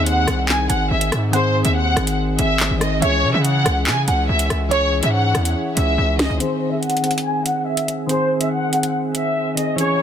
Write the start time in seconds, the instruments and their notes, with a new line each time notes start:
Already playing: 808-style bass D#2, synth keys D#3 C4 G#4, synth pluck D#5
0.00 synth keys D#4
0.06 violin section F#5, closed hi-hat
0.25 808-style bass C2, synth keys D#3 C4, cross-stick, closed hi-hat
0.30 synth keys G#4
0.49 violin section G#5, clap
0.69 808-style bass G#1, violin section F#5, synth pluck G#5, closed hi-hat
0.91 808-style bass G#1, violin section E5
1.01 closed hi-hat
1.12 808-style bass G#2, cross-stick, closed hi-hat
1.31 synth keys D#3 C4, violin section C5, synth pluck F#5, closed hi-hat
1.36 synth keys G#4
1.63 808-style bass D#2, synth keys D#3 C4, violin section E5, closed hi-hat
1.67 synth keys G#4
1.76 violin section F#5
1.94 808-style bass G#1, synth keys D#3 C4, cross-stick, closed hi-hat
1.99 synth keys G#4
2.07 closed hi-hat
2.37 808-style bass G#1, synth keys D#3 C4, violin section E5, closed hi-hat
2.41 synth keys G#4
2.60 clap
2.71 808-style bass G#1
2.78 synth keys D#3 C4, violin section D#5, cross-stick, closed hi-hat
2.83 synth keys D#4
3.00 808-style bass C#2, synth keys E3 C#4, violin section C#5, synth pluck E5, closed hi-hat
3.05 synth keys G#4
3.23 808-style bass C#3
3.32 808-style bass C#3, synth keys E3 C#4, violin section E5
3.36 synth keys G#4
3.45 violin section F#5, closed hi-hat
3.63 808-style bass C#2, synth keys E3 C#4, cross-stick, closed hi-hat
3.68 synth keys G#4
3.87 808-style bass C#3, violin section G#5, clap
4.08 808-style bass C#2, violin section F#5, synth pluck G#5, closed hi-hat
4.29 808-style bass C#2, violin section E5
4.39 closed hi-hat
4.50 808-style bass C#2, cross-stick, closed hi-hat
4.69 synth keys E3 C#4, synth pluck C#5, violin section C#5, closed hi-hat
4.73 synth keys G#4
5.01 808-style bass G#2, synth keys E3 C#4, violin section E5, closed hi-hat
5.05 synth keys G#4
5.14 violin section F#5
5.33 808-style bass E2, synth keys E3 C#4, cross-stick, closed hi-hat
5.37 synth keys E4
5.45 closed hi-hat
5.75 808-style bass C#2, synth keys E3 C#4, violin section E5, closed hi-hat
5.79 synth keys G#4
5.98 808-style bass C#2
6.17 synth keys E3 C#4, violin section D#5, snare, closed hi-hat
6.21 synth keys G#4
6.30 808-style bass C#2
6.38 synth keys D#3 C4, violin section C5, closed hi-hat
6.42 synth keys G#4
6.70 synth keys D#3 C4, violin section E5
6.75 synth keys G#4
6.82 violin section F#5, closed hi-hat
6.90 closed hi-hat
6.97 closed hi-hat
7.01 synth keys D#3 C4, closed hi-hat
7.06 synth keys G#4
7.11 closed hi-hat
7.18 closed hi-hat
7.25 violin section G#5
7.46 violin section F#5, closed hi-hat
7.67 violin section E5
7.77 closed hi-hat
7.88 closed hi-hat
8.07 synth keys D#3 C4, violin section C5, closed hi-hat
8.11 synth keys G#4
8.39 synth keys D#3 C4, violin section E5, closed hi-hat
8.44 synth keys G#4
8.52 violin section F#5
8.70 synth keys D#3 C4, closed hi-hat
8.74 synth keys G#4
8.83 closed hi-hat
9.15 violin section E5, closed hi-hat
9.55 synth keys D#3 C4, violin section D#5, closed hi-hat
9.59 synth keys G#4
9.76 synth keys E3 C#4, violin section C#5, closed hi-hat, riser
9.81 synth keys G#4